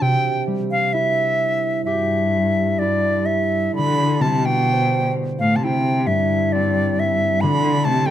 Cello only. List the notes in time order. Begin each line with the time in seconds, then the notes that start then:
1.85 G2
2.81 G2
3.31 G2
3.75 D3
4.20 C3
4.47 B2
5.40 A2
5.56 C3
5.63 C3
6.06 G2
6.53 G2
6.99 G2
7.43 D3
7.86 C3
8.06 D3